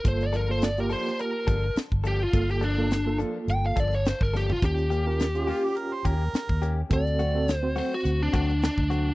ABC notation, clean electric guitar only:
X:1
M:4/4
L:1/8
Q:"Swing 16ths" 1/4=105
K:Gm
V:1 name="Clean electric guitar"
z [F,B,DA] z [F,B,DA] z [F,B,DA] z [F,B,DA] | z [F,B,DA] z [F,B,DA] z [F,B,DA] z [F,B,DA] | z [B,_DG] z [B,DG] z [B,DG] z [B,DG] | z [^F,A,C^F] z [F,A,CF] z [F,A,CF] z [F,A,CF] |]